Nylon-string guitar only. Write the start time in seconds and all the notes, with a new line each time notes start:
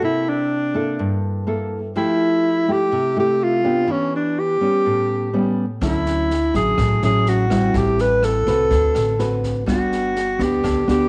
Already playing: A#3 E4 A4
0.02 C3
0.74 A#3 E4 A4
0.99 G2
1.47 A#3 E4 A4
1.96 F3 A3 E4 G4
2.68 A3 E4 G4
2.92 C3
3.16 A3 E4 G4
3.64 B3 D4 G4
3.88 E3
4.61 G3 B3 C#4
4.86 A2
5.33 G3 B3 C#4
5.81 D3 F#3 C#4 E4
6.54 F#3 C#4 E4
6.78 A2
7.03 F#3 C#4 E4
7.50 G3 C4 E4
7.75 A2
8.47 C4 F#4 B4
8.70 D3
9.19 C4 F#4 B4
9.66 G3 B3 D4 F#4
10.39 B3 D4
10.64 D3
10.87 B3 D4 F#4